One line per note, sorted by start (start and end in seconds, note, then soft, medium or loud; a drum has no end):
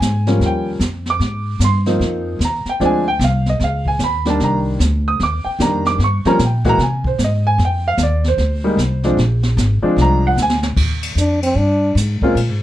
0.00 0.39 G#2 medium
0.00 0.38 G#5 medium
0.00 snare medium
0.00 hi-hat pedal medium
0.27 0.78 F3 medium
0.27 0.78 G3 medium
0.27 0.78 A#3 medium
0.27 0.78 C#4 medium
0.27 snare soft
0.40 0.79 D#2 medium
0.40 brush sweep soft
0.40 snare soft
0.46 0.68 G5 medium
0.79 1.19 F2 medium
0.79 snare medium
0.79 hi-hat pedal soft
1.06 snare soft
1.10 1.59 D6 medium
1.19 1.59 G#2 medium
1.19 brush sweep medium
1.19 snare soft
1.59 1.98 G2 medium
1.59 snare medium
1.59 hi-hat pedal medium
1.64 1.78 C6 medium
1.86 2.37 F3 medium
1.86 2.38 A#3 medium
1.86 2.38 C4 medium
1.86 2.38 D#4 medium
1.86 snare soft
1.99 2.38 F2 medium
1.99 brush sweep soft
1.99 snare soft
2.39 2.63 D#2 medium
2.39 snare soft
2.39 hi-hat pedal medium
2.45 2.67 A#5 medium
2.65 muted upright bass stroke soft
2.65 snare soft
2.69 2.81 G5 medium
2.80 3.19 D2 medium
2.80 3.03 F3 medium
2.80 3.03 G#3 medium
2.80 3.03 C4 medium
2.80 3.03 D4 medium
2.80 brush sweep soft
2.80 snare soft
2.85 3.07 G#5 medium
3.08 3.21 G5 medium
3.19 3.58 C2 loud
3.19 snare medium
3.19 hi-hat pedal medium
3.24 3.47 F5 medium
3.46 3.61 D#5 medium
3.46 snare soft
3.60 3.98 C#2 medium
3.60 brush sweep soft
3.60 snare soft
3.64 3.87 F5 medium
3.86 4.00 G#5 medium
3.86 kick soft
3.99 4.38 D#2 medium
3.99 snare medium
3.99 hi-hat pedal medium
4.04 4.26 B5 medium
4.25 4.77 D#3 medium
4.25 4.77 G3 medium
4.25 4.77 A#3 medium
4.25 4.77 D4 medium
4.25 snare soft
4.30 4.41 A5 medium
4.40 4.79 C2 medium
4.40 brush sweep soft
4.40 snare soft
4.44 4.58 A#5 medium
4.79 5.18 D2 medium
4.79 snare medium
4.79 hi-hat pedal medium
5.08 5.20 D#6 medium
5.20 5.43 D#2 medium
5.20 5.46 D6 medium
5.20 brush sweep soft
5.20 snare medium
5.45 5.59 G5 medium
5.45 muted upright bass stroke soft
5.59 5.98 F2 medium
5.59 5.99 D#3 medium
5.59 6.00 G3 soft
5.59 5.99 A#3 soft
5.59 6.00 D4 medium
5.59 5.85 A#5 medium
5.59 snare medium
5.59 hi-hat pedal medium
5.85 6.00 D6 loud
5.85 snare soft
5.98 6.22 G2 medium
5.98 brush sweep soft
5.98 snare soft
6.04 6.26 C#6 medium
6.25 6.38 F3 medium
6.25 6.38 G3 medium
6.25 6.38 A#3 medium
6.25 6.39 C#4 medium
6.25 6.40 A#5 medium
6.25 muted upright bass stroke soft
6.25 snare soft
6.39 6.78 A#2 medium
6.39 snare medium
6.39 hi-hat pedal soft
6.45 6.67 G5 medium
6.65 6.78 E3 medium
6.65 6.78 G#3 medium
6.65 6.78 A#3 medium
6.65 6.78 F#4 medium
6.65 kick medium
6.65 snare soft
6.69 6.81 A#5 loud
6.78 7.17 C3 medium
6.78 brush sweep soft
6.78 snare soft
6.83 7.06 G#5 medium
7.04 7.20 C5 medium
7.04 kick medium
7.18 7.57 G#2 medium
7.18 snare medium
7.18 hi-hat pedal medium
7.24 7.46 D#5 medium
7.47 7.59 G#5 loud
7.58 7.97 F2 medium
7.58 brush sweep soft
7.58 snare soft
7.65 7.87 G5 medium
7.88 8.00 F5 medium
7.98 8.37 D#2 loud
7.98 snare medium
7.98 hi-hat pedal medium
8.03 8.26 D5 medium
8.24 9.16 C5 medium
8.24 snare soft
8.38 8.77 D2 medium
8.38 brush sweep medium
8.38 snare soft
8.64 8.77 G3 medium
8.64 8.77 G#3 medium
8.64 8.77 A#3 medium
8.64 8.77 D#4 medium
8.77 9.16 C2 medium
8.77 snare medium
8.77 hi-hat pedal medium
9.03 9.17 F3 medium
9.03 9.17 G#3 medium
9.03 9.17 C4 medium
9.03 9.17 D4 medium
9.03 snare soft
9.17 9.56 A#1 medium
9.17 brush sweep soft
9.17 snare soft
9.43 snare medium
9.57 9.81 G#1 loud
9.57 snare medium
9.57 hi-hat pedal medium
9.82 10.34 F3 medium
9.82 10.34 G#3 medium
9.82 10.35 C4 medium
9.82 10.34 D4 medium
9.82 muted upright bass stroke soft
9.96 10.35 C2 medium
9.96 brush sweep medium
9.96 snare medium
10.02 10.24 A#5 medium
10.27 10.39 F#5 medium
10.36 10.75 D2 medium
10.36 snare soft
10.36 hi-hat pedal medium
10.42 10.56 G#5 medium
10.50 snare medium
10.63 snare medium
10.76 11.15 D#2 medium
10.76 kick medium
10.76 crash medium
11.03 ride medium
11.15 11.54 F2 medium
11.15 11.42 D4 medium
11.15 hi-hat pedal medium
11.43 11.59 C4 medium
11.43 ride medium
11.55 11.95 G2 medium
11.55 11.97 D4 medium
11.95 12.20 G#2 medium
11.95 snare soft
11.95 hi-hat pedal medium
11.95 ride medium
12.22 12.36 G#3 medium
12.22 12.35 A#3 medium
12.22 12.36 C4 medium
12.22 12.36 C#4 medium
12.22 12.36 F4 medium
12.22 muted upright bass stroke soft
12.22 kick medium
12.35 12.49 A#2 medium
12.35 ride medium
12.49 12.61 G#2 soft